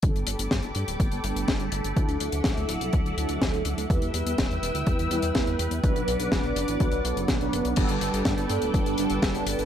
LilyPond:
<<
  \new Staff \with { instrumentName = "String machine" } { \time 4/4 \key g \major \tempo 4 = 124 << { <g'' b'' d'''>1 | <e'' fis'' d'''>1 | <e'' g'' e'''>1 | <d'' fis'' d'''>1 |
<g'' a'' d'''>1 | } \\ { a'1~ | a'1 | b'1~ | b'1 |
b'1 | } >> }
  \new Staff \with { instrumentName = "Analog polysynth" } { \time 4/4 \key g \major <g b d' a'>2~ <g b d' a'>8 <g b d' a'>4 <g b d' a'>8 | <fis d' e' a'>2~ <fis d' e' a'>8 <fis d' e' a'>4 <fis d' e' a'>8 | <g b e' b'>2~ <g b e' b'>8 <g b e' b'>4 <g b e' b'>8 | <fis b d' b'>2~ <fis b d' b'>8 <fis b d' a'>8 <fis b d' b'>16 <fis b d' b'>8. |
<g b d' a'>2~ <g b d' a'>8 <g b d' a'>4 <g b d' a'>8 | }
  \new Staff \with { instrumentName = "Analog synth bass" } { \clef bass \time 4/4 \key g \major g,,16 g,,16 g,,16 g,,16 g,16 g,,16 g,16 d,,16 g,,16 g,,16 g,,16 g,,16 g,,16 g,,16 g,,16 g,,16 | d,16 d,16 d,16 d,16 d,,16 d,16 d,,16 c,16 d,16 d,16 d,16 d,16 d,16 d,16 d,16 d,16 | e,16 e,16 e,16 e,16 e,,16 e,16 e,,16 d,16 e,16 e,16 e,16 e,16 e,16 e,16 e,16 e,16 | b,,16 b,,16 b,,16 b,,16 fis,,16 b,,16 fis,,16 a,,16 b,,16 b,,16 b,,16 fis,,16 b,,16 b,,16 fis,,16 b,,16 |
g,,16 g,,16 g,,16 g,,16 g,16 g,,16 g,16 d,,16 g,,16 g,,16 g,,16 g,,16 g,,16 g,,16 g,,16 g,,16 | }
  \new DrumStaff \with { instrumentName = "Drums" } \drummode { \time 4/4 <hh bd>16 hh16 hh16 hh16 <hh bd sn>16 hh16 hh16 hh16 <hh bd>16 hh16 hh16 hh16 <hh bd sn>16 hh16 hh16 hh16 | <hh bd>16 hh16 hh16 hh16 <hh bd sn>16 hh16 hh16 hh16 <hh bd>16 hh16 hh16 hh16 <hh bd sn>16 hh16 hh16 hh16 | <hh bd>16 hh16 hh16 hh16 <hh bd sn>16 hh16 hh16 hh16 <hh bd>16 hh16 hh16 hh16 <hh bd sn>16 hh16 hh16 hh16 | <hh bd>16 hh16 hh16 hh16 <hh bd sn>16 hh16 hh16 hh16 <hh bd>16 hh16 hh16 hh16 <hh bd sn>16 hh16 hh16 hh16 |
<cymc hh bd>16 hh16 hh16 hh16 <hh bd sn>16 hh16 hh16 hh16 <hh bd>16 hh16 hh16 hh16 <hh bd sn>16 hh16 hh16 hh16 | }
>>